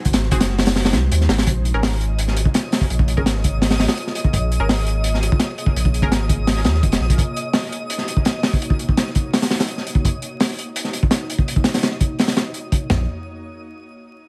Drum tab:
HH |xx-xx-oooox-x-oo|x-x-o-x-x-x-x-o-|x-x-x-x-oooox-x-|x-x-o-x-x-x-x-x-|
SD |-oo-ooooooo--ooo|----oo---o--o-o-|----oo--oooo-o--|----oo---o--o---|
FT |----------------|----------------|----------------|----------------|
BD |o--o------------|o----------o---o|-o-o--o--------o|o----------o---o|

HH |x-x-x-x-o-x-xx-x|x-x-o-x-x-x-x-o-|x-x-x-x-oooox-x-|x-x-o-x-x-x-x-x-|
SD |----oo--oooo-oo-|----oo---o--o-o-|----oo--oooo-o--|----oo---o--o---|
FT |----------------|----------------|----------------|----------------|
BD |-o-o--o-----o--o|o----------o---o|-o-o--o--------o|o----------o---o|

HH |x-oox-x-oox-x-x-|----------------|
SD |--oooo--ooo-----|o---------------|
FT |----------------|o---------------|
BD |-o----o-------o-|----------------|